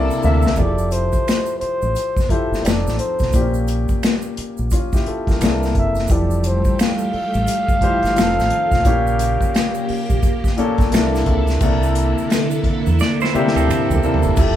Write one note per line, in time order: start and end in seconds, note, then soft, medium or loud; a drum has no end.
0.00 0.21 C3 medium
0.00 0.57 D3 medium
0.00 0.21 A#3 medium
0.00 0.56 A#3 medium
0.00 0.21 E4 medium
0.00 0.57 E4 medium
0.00 0.22 A4 medium
0.00 0.57 A4 medium
0.00 0.22 D5 medium
0.11 shaker soft
0.23 0.45 D2 loud
0.23 0.55 C3 medium
0.23 0.55 A#3 medium
0.23 0.56 E4 medium
0.23 0.56 A4 medium
0.23 0.56 E5 loud
0.23 0.60 E5 loud
0.23 shaker soft
0.42 0.57 C2 medium
0.42 shaker soft
0.46 snare medium
0.56 1.09 F1 medium
0.56 1.86 F3 medium
0.56 1.86 E4 medium
0.56 1.87 G4 medium
0.56 0.66 G#4 soft
0.56 0.94 D5 loud
0.56 kick medium
0.56 closed hi-hat medium
0.56 shaker medium
0.66 1.90 A4 medium
0.78 shaker soft
0.91 1.59 C5 medium
0.91 closed hi-hat medium
0.91 shaker soft
1.13 kick medium
1.13 closed hi-hat soft
1.13 shaker soft
1.28 finger snap medium
1.28 snare medium
1.28 closed hi-hat medium
1.28 shaker medium
1.46 shaker soft
1.60 2.32 C5 medium
1.60 muted fingered electric bass stroke soft
1.60 closed hi-hat medium
1.82 1.95 A1 medium
1.82 shaker soft
1.95 closed hi-hat medium
1.95 shaker soft
2.17 kick medium
2.17 snare soft
2.17 shaker soft
2.29 2.63 F3 medium
2.29 2.65 E4 medium
2.29 2.65 G4 medium
2.29 2.66 A4 medium
2.29 2.65 C5 medium
2.29 muted fingered electric bass stroke soft
2.29 kick medium
2.29 closed hi-hat medium
2.52 2.64 G1 medium
2.52 snare soft
2.52 shaker soft
2.64 2.84 F1 medium
2.64 3.29 F3 medium
2.64 3.29 C4 medium
2.64 3.29 D#4 medium
2.64 3.30 A4 medium
2.64 2.99 D5 loud
2.64 finger snap medium
2.64 snare medium
2.64 closed hi-hat medium
2.64 shaker medium
2.86 2.98 A1 medium
2.86 snare soft
2.86 shaker soft
2.99 3.64 C5 medium
2.99 closed hi-hat medium
3.19 3.33 B1 medium
3.19 kick medium
3.19 snare soft
3.19 closed hi-hat soft
3.19 shaker soft
3.32 3.85 A#1 medium
3.32 4.62 A#2 medium
3.32 4.62 A#3 medium
3.32 3.42 C4 soft
3.32 4.38 G4 medium
3.32 kick loud
3.32 closed hi-hat medium
3.32 shaker medium
3.42 4.41 C#4 medium
3.54 shaker soft
3.68 closed hi-hat medium
3.68 shaker medium
3.88 kick medium
3.88 closed hi-hat soft
3.88 shaker soft
4.03 finger snap medium
4.03 snare medium
4.03 closed hi-hat medium
4.03 shaker medium
4.22 shaker medium
4.37 muted fingered electric bass stroke soft
4.37 closed hi-hat medium
4.57 4.71 A#1 medium
4.57 shaker soft
4.70 4.92 C#4 medium
4.70 4.92 F4 medium
4.70 kick medium
4.70 closed hi-hat medium
4.70 shaker medium
4.93 5.06 E4 medium
4.93 5.06 G4 medium
4.93 kick medium
4.93 snare soft
4.93 shaker soft
5.06 5.27 F4 medium
5.06 5.27 A4 medium
5.06 muted fingered electric bass stroke soft
5.06 closed hi-hat medium
5.27 5.43 G1 medium
5.27 5.61 G4 medium
5.27 5.61 A#4 medium
5.27 kick medium
5.27 snare soft
5.27 closed hi-hat soft
5.27 shaker soft
5.40 5.72 C2 loud
5.40 6.04 C3 medium
5.40 6.05 A#3 medium
5.40 6.05 D4 medium
5.40 6.06 E4 medium
5.40 5.49 G#4 medium
5.40 finger snap medium
5.40 snare loud
5.40 closed hi-hat medium
5.40 shaker medium
5.49 6.09 A4 medium
5.63 snare soft
5.63 shaker soft
5.75 6.07 F#1 medium
5.75 6.13 E5 medium
5.75 kick medium
5.75 closed hi-hat medium
5.95 snare soft
5.95 closed hi-hat soft
5.95 shaker soft
6.08 6.61 F1 medium
6.08 7.38 E3 medium
6.08 7.38 F3 medium
6.08 8.14 G3 medium
6.08 8.82 A3 medium
6.08 8.14 G4 medium
6.08 7.38 G4 medium
6.08 7.39 A4 medium
6.08 kick loud
6.08 closed hi-hat medium
6.08 shaker medium
6.12 6.49 D5 medium
6.31 shaker soft
6.44 6.80 C5 medium
6.44 closed hi-hat medium
6.44 shaker soft
6.65 kick medium
6.65 shaker soft
6.79 10.90 F5 loud
6.79 finger snap medium
6.79 snare medium
6.79 closed hi-hat medium
6.79 shaker medium
6.98 shaker soft
7.13 muted fingered electric bass stroke soft
7.13 open hi-hat soft
7.34 7.47 A1 medium
7.34 closed hi-hat soft
7.34 shaker soft
7.47 closed hi-hat medium
7.47 shaker medium
7.68 kick medium
7.68 shaker soft
7.81 8.17 E3 medium
7.81 8.14 F3 medium
7.81 8.17 G4 medium
7.81 8.17 C5 loud
7.81 muted fingered electric bass stroke soft
7.81 kick medium
7.81 closed hi-hat medium
8.03 8.18 G1 medium
8.03 snare soft
8.03 closed hi-hat soft
8.03 shaker soft
8.16 8.36 F1 medium
8.16 8.84 D#3 medium
8.16 8.80 F3 medium
8.16 8.81 C4 medium
8.16 8.81 D#4 medium
8.16 8.84 F4 medium
8.16 8.81 A4 medium
8.16 finger snap medium
8.16 snare loud
8.16 closed hi-hat medium
8.16 shaker medium
8.39 8.50 A1 medium
8.39 snare soft
8.39 shaker soft
8.50 closed hi-hat medium
8.71 8.84 B1 medium
8.71 kick medium
8.71 snare soft
8.71 shaker soft
8.85 9.37 A#1 medium
8.85 10.13 A#2 medium
8.85 10.90 C#3 medium
8.85 10.14 A#3 medium
8.85 11.59 A#3 medium
8.85 10.14 C#4 medium
8.85 10.90 G4 medium
8.85 10.15 G4 medium
8.85 kick loud
8.85 closed hi-hat medium
8.85 shaker medium
9.07 shaker soft
9.19 closed hi-hat medium
9.19 shaker medium
9.41 muted fingered electric bass stroke soft
9.41 kick medium
9.41 shaker soft
9.54 finger snap medium
9.54 snare medium
9.54 closed hi-hat medium
9.54 shaker medium
9.75 shaker medium
9.88 muted fingered electric bass stroke soft
9.88 open hi-hat soft
10.10 10.22 A#1 medium
10.10 kick medium
10.10 shaker soft
10.23 kick medium
10.23 closed hi-hat medium
10.23 shaker medium
10.44 kick medium
10.44 snare soft
10.44 shaker soft
10.57 10.92 A#2 medium
10.57 10.91 A#3 medium
10.57 10.93 C#4 medium
10.57 10.92 A4 medium
10.57 muted fingered electric bass stroke soft
10.57 closed hi-hat medium
10.78 10.95 G1 medium
10.78 kick loud
10.78 snare soft
10.78 closed hi-hat soft
10.78 shaker soft
10.92 11.24 C2 medium
10.92 11.56 C3 medium
10.92 11.57 A#3 medium
10.92 11.61 D4 medium
10.92 11.57 D4 medium
10.92 11.59 E4 medium
10.92 11.57 E4 medium
10.92 11.59 A4 medium
10.92 11.57 A4 medium
10.92 finger snap medium
10.92 snare loud
10.92 closed hi-hat medium
10.92 shaker medium
11.15 snare soft
11.15 shaker soft
11.26 11.58 C#2 medium
11.26 kick medium
11.26 closed hi-hat medium
11.47 snare soft
11.47 closed hi-hat soft
11.47 shaker soft
11.60 12.13 C2 medium
11.60 12.89 C3 medium
11.60 14.34 D3 medium
11.60 14.34 A#3 medium
11.60 12.90 A#3 medium
11.60 12.90 D4 medium
11.60 14.34 E4 medium
11.60 12.90 E4 medium
11.60 14.34 A4 medium
11.60 12.91 A4 medium
11.60 kick loud
11.60 crash medium
11.60 shaker medium
11.83 shaker soft
11.95 closed hi-hat medium
12.18 muted fingered electric bass stroke soft
12.18 shaker soft
12.30 finger snap medium
12.30 snare medium
12.30 closed hi-hat medium
12.30 shaker medium
12.51 shaker soft
12.64 muted fingered electric bass stroke soft
12.64 kick medium
12.64 closed hi-hat medium
12.86 12.99 E2 medium
12.86 shaker soft
12.99 13.20 D5 medium
12.99 snare medium
12.99 shaker medium
13.21 13.54 E4 medium
13.21 13.54 C5 medium
13.21 snare medium
13.21 shaker soft
13.33 13.98 C3 medium
13.33 13.98 A#3 medium
13.33 13.98 D4 medium
13.33 13.98 E4 medium
13.33 13.99 G4 loud
13.33 muted fingered electric bass stroke soft
13.33 shaker soft
13.47 snare medium
13.56 13.67 D2 medium
13.56 14.34 C4 medium
13.56 14.34 A4 medium
13.56 shaker soft
13.68 finger snap medium
13.68 muted fingered electric bass stroke soft
13.68 mid tom medium
13.68 shaker medium
13.90 14.02 C2 medium
13.90 floor tom medium
13.90 shaker soft
14.03 14.35 C3 medium
14.03 14.35 A#3 medium
14.03 14.35 D4 medium
14.03 14.35 E4 medium
14.03 14.36 A4 medium
14.03 shaker soft
14.14 floor tom medium
14.23 14.37 F#1 medium
14.23 shaker soft
14.35 14.56 F1 medium
14.35 14.56 F3 medium
14.35 14.56 A3 medium
14.35 14.56 E4 medium
14.35 14.56 G4 loud
14.35 14.56 G4 medium
14.35 14.56 A4 medium
14.35 kick loud
14.35 crash loud
14.35 shaker medium
14.39 14.56 A4 medium